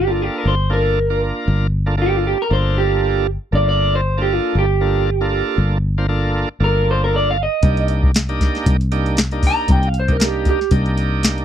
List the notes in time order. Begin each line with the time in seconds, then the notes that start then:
Already playing: G1 G4
0.07 A#3 D4 F4 A4
0.22 G4
0.38 A#4
0.45 G1 C5
0.70 A#3 D4 F4 A4 A#4
1.10 A#3 D4 F4 A#4
1.48 G1
1.86 A#3 D4 F4 A4
1.97 A#3 D4 F4 A4
2.02 G4
2.17 F4
2.27 G4
2.42 A#4
2.50 G1 A#3 D4 F4 A4 C5
2.78 G4
3.52 G1 A#3 D4 F4 A4 D5
3.69 D5
3.95 C5
4.17 A#3 D4 F4 A4
4.22 G4
4.33 F4
4.55 G1 G4
4.81 A#3 D4 F4 A4
5.21 A#3 D4 F4 A4
5.58 G1
5.98 A#3 D4 F4 C5
6.08 A#3 D4 F4 A4
6.60 G1 A#3 D4 F4 A4
6.64 A#4
6.91 C5
7.04 A#4
7.16 D5
7.31 F5
7.43 D#5
7.63 C2 A#3 D4 D#4 G4, kick, closed hi-hat
7.77 closed hi-hat
7.88 closed hi-hat
8.03 kick
8.15 snare, closed hi-hat
8.29 A#3 D4 D#4 G4, closed hi-hat
8.40 kick, snare, closed hi-hat
8.55 snare, closed hi-hat
8.66 C2, kick, closed hi-hat
8.81 closed hi-hat
8.92 A#3 D4 D#4 G4, closed hi-hat
9.06 closed hi-hat
9.17 snare, closed hi-hat
9.31 A#3 D4 D#4 G4, closed hi-hat
9.43 kick, open hi-hat
9.47 A#5
9.68 C2 G5, kick, closed hi-hat
9.83 closed hi-hat
9.88 F5
9.94 closed hi-hat
10.00 C5
10.08 A#3 D4 D#4 G4, kick, closed hi-hat
10.12 A#4
10.20 A#3 D4 D#4 G4, snare, closed hi-hat
10.24 G4
10.45 G4, kick, closed hi-hat
10.61 snare
10.71 C2 A#3 D4 D#4 G4, kick, closed hi-hat
10.86 closed hi-hat
10.98 closed hi-hat
11.23 snare, closed hi-hat
11.38 closed hi-hat